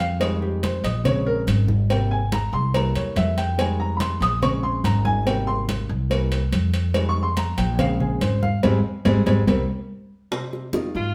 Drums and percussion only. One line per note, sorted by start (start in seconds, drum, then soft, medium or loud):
0.00 cowbell medium
0.21 cowbell loud
0.21 high conga soft
0.42 high conga soft
0.63 cowbell medium
0.63 high conga medium
0.84 cowbell medium
0.84 high conga soft
1.05 cowbell loud
1.05 high conga soft
1.05 low conga medium
1.26 high conga soft
1.47 cowbell medium
1.47 high conga medium
1.68 high conga medium
1.90 cowbell loud
1.90 high conga soft
2.11 high conga soft
2.32 cowbell medium
2.32 high conga medium
2.74 cowbell loud
2.74 high conga soft
2.95 cowbell medium
2.95 high conga soft
3.16 cowbell medium
3.16 high conga medium
3.38 cowbell medium
3.38 high conga soft
3.59 cowbell loud
3.59 high conga soft
3.80 high conga soft
4.00 cowbell medium
4.00 high conga medium
4.21 cowbell medium
4.21 high conga soft
4.42 cowbell medium
4.42 high conga soft
4.42 low conga medium
4.63 high conga soft
4.84 cowbell medium
4.84 high conga medium
5.05 high conga medium
5.27 cowbell loud
5.27 high conga soft
5.48 high conga soft
5.69 cowbell medium
5.69 high conga medium
6.10 cowbell loud
6.10 high conga soft
6.32 cowbell medium
6.32 high conga soft
6.53 cowbell medium
6.53 high conga medium
6.74 cowbell medium
6.74 high conga soft
6.94 cowbell loud
6.94 high conga soft
7.16 high conga soft
7.37 cowbell medium
7.37 high conga medium
7.58 cowbell medium
7.58 high conga soft
7.79 cowbell loud
7.79 high conga soft
7.79 low conga medium
8.00 high conga soft
8.00 low conga medium
8.21 cowbell medium
8.21 high conga medium
8.43 high conga medium
8.63 cowbell loud
8.63 high conga medium
9.05 cowbell loud
9.05 high conga loud
9.26 cowbell loud
9.26 high conga loud
9.48 cowbell loud
9.48 high conga loud
10.31 high bongo medium
10.31 high conga soft
10.52 high bongo soft
10.52 high conga soft
10.73 high bongo medium
10.73 high conga medium
10.95 high bongo soft
10.95 high conga soft